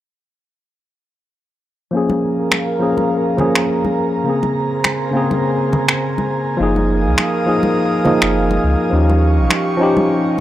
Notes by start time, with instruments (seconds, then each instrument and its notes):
1.91 tine electric piano F3 A#3 C#4, analog synth pad A#4 F5 A#5
1.97 tine electric piano G#4
2.10 high conga
2.52 finger snap, high conga
2.80 tine electric piano F3 A#3 C#4 G#4
2.97 high conga
3.37 tine electric piano F3 A#3 C#4 G#4, high conga, low conga
3.55 finger snap
3.85 high conga
4.24 tine electric piano C#3 A#3 C4, analog synth pad A#3 C5 G#5
4.30 tine electric piano G#4
4.43 high conga
4.84 finger snap, high conga
5.11 tine electric piano C#3 A#3 C4
5.17 tine electric piano G#4
5.31 high conga
5.73 high conga, low conga
5.88 finger snap
6.18 high conga
6.57 sub bass F#1, tine electric piano F3 A#3 D#4, analog synth pad A#4 F5 D#6
6.63 tine electric piano G#4
6.76 high conga
7.06 sub bass C#2
7.18 finger snap, high conga
7.46 tine electric piano F3 A#3 D#4 G#4
7.63 high conga
8.04 tine electric piano F3 A#3 D#4 G#4, high conga, low conga
8.22 sub bass F#1, finger snap
8.51 high conga
8.64 sub bass C#2
8.90 sub bass D#2, tine electric piano F3 C#4 D#4, analog synth pad G4 C#6
8.95 tine electric piano G4
9.10 high conga
9.38 sub bass A#1
9.50 finger snap, high conga
9.77 tine electric piano F3 C#4 D#4
9.83 tine electric piano G4
9.97 high conga